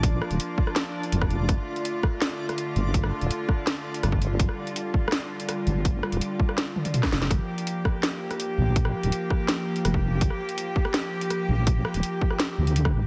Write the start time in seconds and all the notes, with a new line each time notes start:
Already playing: A#1 F3 A#3 D4 F4 D5
0.03 kick, closed hi-hat
0.22 cross-stick
0.30 D1, closed hi-hat
0.40 closed hi-hat
0.58 kick
0.67 cross-stick
0.76 snare, closed hi-hat
1.03 closed hi-hat
1.12 F1, closed hi-hat
1.21 kick, cross-stick
1.30 closed hi-hat
1.49 G1 D3 A3, kick, cross-stick, closed hi-hat
1.76 closed hi-hat
1.85 closed hi-hat
2.03 kick, cross-stick
2.22 snare, closed hi-hat
2.49 cross-stick, closed hi-hat
2.58 closed hi-hat
2.76 G1, closed hi-hat
2.94 kick, closed hi-hat
3.04 cross-stick
3.21 D1, closed hi-hat
3.31 closed hi-hat
3.49 kick, cross-stick
3.67 snare, closed hi-hat
3.94 closed hi-hat
4.03 G1, cross-stick, closed hi-hat
4.12 kick
4.22 closed hi-hat
4.39 G1 G3, kick, closed hi-hat
4.49 cross-stick
4.67 closed hi-hat
4.76 closed hi-hat
4.94 kick
5.08 cross-stick
5.12 snare, closed hi-hat
5.40 closed hi-hat
5.49 cross-stick, closed hi-hat
5.67 G1, closed hi-hat
5.85 kick, closed hi-hat
6.03 cross-stick
6.12 D1, closed hi-hat
6.21 closed hi-hat
6.40 kick
6.49 cross-stick
6.58 snare, closed hi-hat
6.76 high tom
6.85 closed hi-hat, high tom
6.94 closed hi-hat, mid tom
7.03 kick, cross-stick, snare
7.12 F1, snare, closed hi-hat
7.22 snare
7.30 G1 F3 A#3 G4, kick, cross-stick, closed hi-hat
7.58 closed hi-hat
7.67 closed hi-hat
7.85 kick, cross-stick
8.03 snare, closed hi-hat
8.31 cross-stick, closed hi-hat
8.40 closed hi-hat
8.58 A#1
8.76 kick, closed hi-hat
8.85 cross-stick
9.03 D1, closed hi-hat
9.12 closed hi-hat
9.30 kick, cross-stick
9.49 snare, closed hi-hat
9.76 closed hi-hat
9.85 F1, cross-stick, closed hi-hat
9.94 kick
10.21 G1, kick, closed hi-hat
10.30 cross-stick
10.49 closed hi-hat
10.58 closed hi-hat
10.76 kick
10.85 cross-stick
10.94 snare, closed hi-hat
11.21 closed hi-hat
11.30 cross-stick, closed hi-hat
11.49 A#1
11.67 kick, closed hi-hat
11.85 cross-stick
11.94 D1, closed hi-hat
12.03 closed hi-hat
12.21 kick
12.30 cross-stick
12.40 snare, closed hi-hat
12.58 D2
12.67 closed hi-hat
12.76 closed hi-hat
12.85 kick, cross-stick
12.94 A1